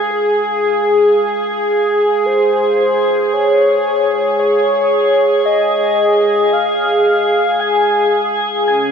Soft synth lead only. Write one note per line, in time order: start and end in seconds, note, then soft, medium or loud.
0.11 2.27 G#4 medium
2.26 3.35 C5 medium
3.33 4.39 C#5 loud
4.39 5.42 C#5 loud
5.46 6.54 D#5 loud
6.53 7.61 F5 loud
7.60 8.40 G#5 loud
8.68 8.92 G#5 loud